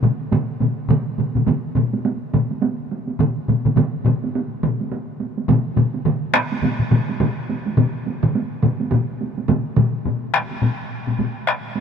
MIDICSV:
0, 0, Header, 1, 2, 480
1, 0, Start_track
1, 0, Tempo, 574163
1, 746, Time_signature, 4, 2, 24, 8
1, 5543, Tempo, 569260
1, 9905, End_track
2, 0, Start_track
2, 0, Title_t, "Taiko and cinematic ensemble drums"
2, 22, Note_on_c, 9, 45, 92
2, 29, Note_on_c, 9, 48, 48
2, 30, Note_on_c, 9, 47, 85
2, 106, Note_off_c, 9, 45, 0
2, 112, Note_off_c, 9, 48, 0
2, 114, Note_off_c, 9, 47, 0
2, 175, Note_on_c, 9, 48, 18
2, 259, Note_off_c, 9, 48, 0
2, 268, Note_on_c, 9, 48, 60
2, 270, Note_on_c, 9, 45, 95
2, 274, Note_on_c, 9, 47, 95
2, 351, Note_off_c, 9, 48, 0
2, 353, Note_off_c, 9, 45, 0
2, 357, Note_off_c, 9, 47, 0
2, 411, Note_on_c, 9, 48, 19
2, 495, Note_off_c, 9, 48, 0
2, 505, Note_on_c, 9, 45, 68
2, 509, Note_on_c, 9, 48, 54
2, 515, Note_on_c, 9, 47, 74
2, 589, Note_off_c, 9, 45, 0
2, 592, Note_off_c, 9, 48, 0
2, 599, Note_off_c, 9, 47, 0
2, 652, Note_on_c, 9, 48, 20
2, 735, Note_off_c, 9, 48, 0
2, 742, Note_on_c, 9, 45, 100
2, 747, Note_on_c, 9, 48, 52
2, 756, Note_on_c, 9, 47, 102
2, 825, Note_off_c, 9, 45, 0
2, 831, Note_off_c, 9, 48, 0
2, 840, Note_off_c, 9, 47, 0
2, 989, Note_on_c, 9, 48, 47
2, 990, Note_on_c, 9, 45, 62
2, 1001, Note_on_c, 9, 47, 64
2, 1073, Note_off_c, 9, 48, 0
2, 1074, Note_off_c, 9, 45, 0
2, 1085, Note_off_c, 9, 47, 0
2, 1130, Note_on_c, 9, 45, 62
2, 1134, Note_on_c, 9, 48, 46
2, 1144, Note_on_c, 9, 47, 66
2, 1214, Note_off_c, 9, 45, 0
2, 1218, Note_off_c, 9, 48, 0
2, 1225, Note_on_c, 9, 48, 60
2, 1227, Note_off_c, 9, 47, 0
2, 1229, Note_on_c, 9, 45, 88
2, 1236, Note_on_c, 9, 47, 93
2, 1308, Note_off_c, 9, 48, 0
2, 1312, Note_off_c, 9, 45, 0
2, 1320, Note_off_c, 9, 47, 0
2, 1466, Note_on_c, 9, 45, 93
2, 1466, Note_on_c, 9, 48, 50
2, 1480, Note_on_c, 9, 47, 80
2, 1550, Note_off_c, 9, 45, 0
2, 1550, Note_off_c, 9, 48, 0
2, 1563, Note_off_c, 9, 47, 0
2, 1616, Note_on_c, 9, 48, 55
2, 1700, Note_off_c, 9, 48, 0
2, 1714, Note_on_c, 9, 48, 68
2, 1797, Note_off_c, 9, 48, 0
2, 1952, Note_on_c, 9, 48, 50
2, 1956, Note_on_c, 9, 47, 85
2, 1957, Note_on_c, 9, 45, 94
2, 2036, Note_off_c, 9, 48, 0
2, 2040, Note_off_c, 9, 45, 0
2, 2040, Note_off_c, 9, 47, 0
2, 2095, Note_on_c, 9, 48, 43
2, 2179, Note_off_c, 9, 48, 0
2, 2191, Note_on_c, 9, 48, 70
2, 2274, Note_off_c, 9, 48, 0
2, 2437, Note_on_c, 9, 48, 52
2, 2520, Note_off_c, 9, 48, 0
2, 2577, Note_on_c, 9, 48, 47
2, 2660, Note_off_c, 9, 48, 0
2, 2668, Note_on_c, 9, 45, 102
2, 2673, Note_on_c, 9, 48, 55
2, 2678, Note_on_c, 9, 47, 99
2, 2752, Note_off_c, 9, 45, 0
2, 2756, Note_off_c, 9, 48, 0
2, 2761, Note_off_c, 9, 47, 0
2, 2912, Note_on_c, 9, 45, 68
2, 2914, Note_on_c, 9, 48, 53
2, 2919, Note_on_c, 9, 47, 67
2, 2995, Note_off_c, 9, 45, 0
2, 2998, Note_off_c, 9, 48, 0
2, 3002, Note_off_c, 9, 47, 0
2, 3052, Note_on_c, 9, 45, 68
2, 3057, Note_on_c, 9, 48, 46
2, 3061, Note_on_c, 9, 47, 72
2, 3135, Note_off_c, 9, 45, 0
2, 3140, Note_off_c, 9, 48, 0
2, 3145, Note_off_c, 9, 47, 0
2, 3149, Note_on_c, 9, 45, 94
2, 3151, Note_on_c, 9, 48, 63
2, 3153, Note_on_c, 9, 47, 94
2, 3232, Note_off_c, 9, 45, 0
2, 3235, Note_off_c, 9, 48, 0
2, 3236, Note_off_c, 9, 47, 0
2, 3390, Note_on_c, 9, 45, 97
2, 3392, Note_on_c, 9, 47, 83
2, 3397, Note_on_c, 9, 48, 50
2, 3473, Note_off_c, 9, 45, 0
2, 3475, Note_off_c, 9, 47, 0
2, 3480, Note_off_c, 9, 48, 0
2, 3542, Note_on_c, 9, 48, 56
2, 3626, Note_off_c, 9, 48, 0
2, 3640, Note_on_c, 9, 48, 68
2, 3723, Note_off_c, 9, 48, 0
2, 3872, Note_on_c, 9, 47, 86
2, 3873, Note_on_c, 9, 45, 97
2, 3876, Note_on_c, 9, 48, 51
2, 3956, Note_off_c, 9, 45, 0
2, 3956, Note_off_c, 9, 47, 0
2, 3960, Note_off_c, 9, 48, 0
2, 4017, Note_on_c, 9, 48, 44
2, 4100, Note_off_c, 9, 48, 0
2, 4110, Note_on_c, 9, 48, 66
2, 4193, Note_off_c, 9, 48, 0
2, 4348, Note_on_c, 9, 48, 54
2, 4432, Note_off_c, 9, 48, 0
2, 4493, Note_on_c, 9, 48, 47
2, 4577, Note_off_c, 9, 48, 0
2, 4583, Note_on_c, 9, 45, 106
2, 4588, Note_on_c, 9, 47, 104
2, 4589, Note_on_c, 9, 48, 61
2, 4666, Note_off_c, 9, 45, 0
2, 4671, Note_off_c, 9, 47, 0
2, 4673, Note_off_c, 9, 48, 0
2, 4821, Note_on_c, 9, 45, 85
2, 4821, Note_on_c, 9, 48, 51
2, 4826, Note_on_c, 9, 47, 93
2, 4904, Note_off_c, 9, 48, 0
2, 4905, Note_off_c, 9, 45, 0
2, 4909, Note_off_c, 9, 47, 0
2, 4968, Note_on_c, 9, 48, 49
2, 5052, Note_off_c, 9, 48, 0
2, 5059, Note_on_c, 9, 45, 93
2, 5061, Note_on_c, 9, 48, 59
2, 5063, Note_on_c, 9, 47, 94
2, 5142, Note_off_c, 9, 45, 0
2, 5145, Note_off_c, 9, 48, 0
2, 5146, Note_off_c, 9, 47, 0
2, 5297, Note_on_c, 9, 37, 76
2, 5301, Note_off_c, 9, 37, 0
2, 5301, Note_on_c, 9, 37, 61
2, 5305, Note_on_c, 9, 48, 55
2, 5385, Note_off_c, 9, 37, 0
2, 5389, Note_off_c, 9, 48, 0
2, 5450, Note_on_c, 9, 48, 53
2, 5533, Note_off_c, 9, 48, 0
2, 5536, Note_on_c, 9, 45, 64
2, 5540, Note_on_c, 9, 47, 72
2, 5544, Note_on_c, 9, 48, 68
2, 5620, Note_off_c, 9, 45, 0
2, 5624, Note_off_c, 9, 47, 0
2, 5629, Note_off_c, 9, 48, 0
2, 5679, Note_on_c, 9, 45, 62
2, 5684, Note_on_c, 9, 47, 65
2, 5764, Note_off_c, 9, 45, 0
2, 5768, Note_off_c, 9, 47, 0
2, 5779, Note_on_c, 9, 45, 88
2, 5782, Note_on_c, 9, 48, 56
2, 5783, Note_on_c, 9, 47, 90
2, 5864, Note_off_c, 9, 45, 0
2, 5866, Note_off_c, 9, 48, 0
2, 5867, Note_off_c, 9, 47, 0
2, 5932, Note_on_c, 9, 48, 49
2, 6016, Note_off_c, 9, 48, 0
2, 6024, Note_on_c, 9, 45, 103
2, 6025, Note_on_c, 9, 47, 93
2, 6030, Note_on_c, 9, 48, 71
2, 6108, Note_off_c, 9, 45, 0
2, 6109, Note_off_c, 9, 47, 0
2, 6114, Note_off_c, 9, 48, 0
2, 6271, Note_on_c, 9, 48, 60
2, 6355, Note_off_c, 9, 48, 0
2, 6412, Note_on_c, 9, 48, 57
2, 6496, Note_off_c, 9, 48, 0
2, 6504, Note_on_c, 9, 45, 89
2, 6505, Note_on_c, 9, 48, 60
2, 6506, Note_on_c, 9, 47, 101
2, 6588, Note_off_c, 9, 45, 0
2, 6589, Note_off_c, 9, 48, 0
2, 6590, Note_off_c, 9, 47, 0
2, 6752, Note_on_c, 9, 48, 56
2, 6836, Note_off_c, 9, 48, 0
2, 6890, Note_on_c, 9, 47, 95
2, 6892, Note_on_c, 9, 45, 93
2, 6895, Note_on_c, 9, 48, 47
2, 6975, Note_off_c, 9, 47, 0
2, 6976, Note_off_c, 9, 45, 0
2, 6980, Note_off_c, 9, 48, 0
2, 6994, Note_on_c, 9, 48, 66
2, 7078, Note_off_c, 9, 48, 0
2, 7225, Note_on_c, 9, 47, 86
2, 7230, Note_on_c, 9, 45, 95
2, 7231, Note_on_c, 9, 48, 54
2, 7309, Note_off_c, 9, 47, 0
2, 7314, Note_off_c, 9, 45, 0
2, 7316, Note_off_c, 9, 48, 0
2, 7373, Note_on_c, 9, 48, 59
2, 7457, Note_off_c, 9, 48, 0
2, 7465, Note_on_c, 9, 47, 90
2, 7468, Note_on_c, 9, 48, 76
2, 7474, Note_on_c, 9, 45, 85
2, 7549, Note_off_c, 9, 47, 0
2, 7553, Note_off_c, 9, 48, 0
2, 7558, Note_off_c, 9, 45, 0
2, 7717, Note_on_c, 9, 48, 52
2, 7801, Note_off_c, 9, 48, 0
2, 7857, Note_on_c, 9, 48, 50
2, 7942, Note_off_c, 9, 48, 0
2, 7947, Note_on_c, 9, 47, 92
2, 7950, Note_on_c, 9, 45, 100
2, 7955, Note_on_c, 9, 48, 66
2, 8031, Note_off_c, 9, 47, 0
2, 8034, Note_off_c, 9, 45, 0
2, 8040, Note_off_c, 9, 48, 0
2, 8186, Note_on_c, 9, 47, 99
2, 8189, Note_on_c, 9, 45, 82
2, 8197, Note_on_c, 9, 48, 59
2, 8270, Note_off_c, 9, 47, 0
2, 8273, Note_off_c, 9, 45, 0
2, 8282, Note_off_c, 9, 48, 0
2, 8430, Note_on_c, 9, 45, 84
2, 8436, Note_on_c, 9, 48, 45
2, 8514, Note_off_c, 9, 45, 0
2, 8520, Note_off_c, 9, 48, 0
2, 8668, Note_on_c, 9, 37, 63
2, 8753, Note_off_c, 9, 37, 0
2, 8815, Note_on_c, 9, 48, 40
2, 8899, Note_off_c, 9, 48, 0
2, 8906, Note_on_c, 9, 45, 84
2, 8910, Note_on_c, 9, 48, 47
2, 8990, Note_off_c, 9, 45, 0
2, 8994, Note_off_c, 9, 48, 0
2, 9289, Note_on_c, 9, 45, 59
2, 9289, Note_on_c, 9, 48, 42
2, 9373, Note_off_c, 9, 45, 0
2, 9373, Note_off_c, 9, 48, 0
2, 9386, Note_on_c, 9, 45, 78
2, 9387, Note_on_c, 9, 48, 52
2, 9470, Note_off_c, 9, 45, 0
2, 9472, Note_off_c, 9, 48, 0
2, 9628, Note_on_c, 9, 37, 61
2, 9712, Note_off_c, 9, 37, 0
2, 9864, Note_on_c, 9, 48, 53
2, 9905, Note_off_c, 9, 48, 0
2, 9905, End_track
0, 0, End_of_file